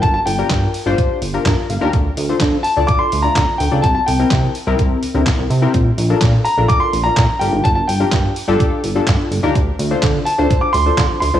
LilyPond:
<<
  \new Staff \with { instrumentName = "Grand piano" } { \time 4/4 \key d \minor \tempo 4 = 126 a''16 a''16 g''4 r2 r8 | r4. a''8 d'''16 c'''8 bes''8. g''8 | a''16 a''16 g''4 r2 r8 | r4. bes''8 d'''16 c'''8 bes''8. g''8 |
a''16 a''16 g''4 r2 r8 | r4. a''8. d'''16 c'''4 c'''8 | }
  \new Staff \with { instrumentName = "Synth keys" } { \time 4/4 \key d \minor << { r2. bes''8 f''8 | r1 | r1 | r1 |
r1 | r1 | } \\ { <d' f' g' bes'>8 r16 <d' f' g' bes'>8. r16 <d' f' g' c''>8. r16 <d' f' g' bes'>8. r16 <d' f' g' bes'>16 | r8. <d' f' a' c''>8. r16 <d' f' a' d''>8. r16 <a d' f' d''>8. r16 <d' f' a' d''>16 | r8. <c' e' g' bes'>8. r16 <c' e' g' bes'>8. r16 <c' e' g' bes'>8. r16 <c' e' g' bes'>16 | r8. <d' f' a' bes'>8. r16 <d' f' a' bes'>8. r16 <d' f' bes'>8. <d' f' g' bes'>8~ |
<d' f' g' bes'>8 r16 <d' f' g' bes'>8. r16 <d' f' g' a'>8. r16 <d' f' g' a'>8. r16 <d' f' g' bes'>16 | r8. <d' f' a' c''>8. r16 <d' f' a' c''>8. r16 <d' f' a' c''>8. r16 <d' f' a' c''>16 | } >> }
  \new Staff \with { instrumentName = "Analog synth bass" } { \clef bass \time 4/4 \key d \minor g,,8 g,,8 g,8 r16 g,,16 r8 g,,8 g,16 r16 g,,16 ees,16 | d,8 d,8 d8 r16 d,16 r8 d,8 d16 r16 d,16 cis,16 | c,8 c,8 c8 r16 c,16 c,8 d,16 d,16 c,16 c,16 c8 | bes,,8 bes,,8 bes,8 r16 bes,,16 r8 bes,,8 bes,16 r16 g,,16 gis,,16 |
g,,8 g,,8 g,8 r16 g,,16 r8 g,,8 g,16 r16 g,,16 ees,16 | d,8 d,8 d8 r16 d,16 r8 d,8 d16 r16 d,16 cis,16 | }
  \new DrumStaff \with { instrumentName = "Drums" } \drummode { \time 4/4 <hh bd>8 hho8 <hc hh bd sn>8 hho8 <hh bd>8 hho8 <hc hh bd sn>8 hho8 | <hh bd>8 hho8 <hc hh bd sn>8 hho8 <hh bd>8 hho8 <hc hh bd sn>8 hho8 | <hh bd>8 hho8 <hc hh bd sn>8 hho8 <hh bd>8 hho8 <hc hh bd sn>8 hho8 | <hh bd>8 hho8 <hc hh bd sn>8 hho8 <hh bd>8 hho8 <hc hh bd sn>8 hho8 |
<hh bd>8 hho8 <hc hh bd sn>8 hho8 <hh bd>8 hho8 <hc hh bd sn>8 hho8 | <hh bd>8 hho8 <hc hh bd sn>8 hho8 <hh bd>8 hho8 <hc hh bd sn>8 hho8 | }
>>